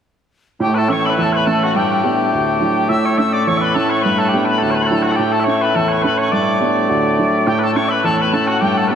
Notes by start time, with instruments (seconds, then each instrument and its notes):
0.60 upright piano A2, bagpipes A2 A3 G4, tin whistle G5
0.75 bagpipes A4 B4, tin whistle A5
0.89 upright piano E3 A3 C#4, bagpipes C#5 E5, tin whistle C#6
1.05 bagpipes E5, tin whistle B5
1.10 bagpipes B4
1.18 upright piano E2, tin whistle A5
1.23 bagpipes A4
1.33 bagpipes B4 C#5, tin whistle B5
1.46 upright piano E3 A3 C#4, bagpipes A4, tin whistle A5
1.63 bagpipes F#4, tin whistle F#5
1.75 upright piano G2, bagpipes G4, tin whistle G5
2.03 upright piano G3 B3 D4
2.33 upright piano D2
2.60 upright piano F#3 D4 E4
2.89 upright piano A2, bagpipes E5, tin whistle E6
3.05 bagpipes C#5
3.18 upright piano A3 C#4 E4, bagpipes E5, tin whistle E6
3.33 bagpipes D5, tin whistle D6
3.47 upright piano E2, bagpipes C#5, tin whistle C#6
3.57 bagpipes B4 E5
3.64 tin whistle B5
3.74 upright piano A3 C#4 E4, bagpipes A4, tin whistle A5
3.90 bagpipes C#5, tin whistle C#6
4.02 upright piano G2, bagpipes B4, tin whistle B5
4.18 bagpipes A4, tin whistle A5
4.29 bagpipes G4
4.34 upright piano G3 B3 D4, tin whistle G5
4.45 bagpipes B4
4.49 tin whistle B5
4.58 upright piano D2, bagpipes A4
4.63 tin whistle A5
4.71 bagpipes C#5
4.75 bagpipes B4, tin whistle B5
4.82 bagpipes C#5
4.87 upright piano F#3, bagpipes A4
4.91 upright piano D4 E4, tin whistle A5
5.03 bagpipes F#4, tin whistle F#5
5.12 bagpipes A4
5.16 upright piano A2, bagpipes G4, tin whistle G5
5.32 bagpipes A4, tin whistle A5
5.40 bagpipes C#5 E5
5.47 upright piano A3 C#4 E4, tin whistle C#6
5.62 bagpipes B4, tin whistle B5
5.75 upright piano E2, bagpipes A4, tin whistle A5
5.88 bagpipes C#5
5.93 tin whistle C#6
5.99 bagpipes B4 C#5
6.03 upright piano A3 C#4 E4, tin whistle B5
6.18 bagpipes C#5, tin whistle C#6
6.32 upright piano G2, bagpipes D5, tin whistle D6
6.61 upright piano G3 B3 D4
6.89 upright piano D2
7.18 upright piano F#3 D4 E4
7.47 upright piano A2, bagpipes G4, tin whistle G5
7.59 bagpipes B4
7.63 bagpipes A4, tin whistle A5
7.74 upright piano A3 C#4 E4, bagpipes C#5, tin whistle C#6
7.89 bagpipes B4 E5, tin whistle B5
8.04 upright piano E2, bagpipes A4, tin whistle A5
8.20 bagpipes B4, tin whistle B5
8.32 upright piano A3 C#4 E4, bagpipes A4, tin whistle A5
8.47 bagpipes F#4, tin whistle F#5
8.61 upright piano G2, bagpipes G4, tin whistle G5
8.78 bagpipes A4, tin whistle A5
8.88 upright piano G3 B3 D4, bagpipes A4 B4
8.92 tin whistle A5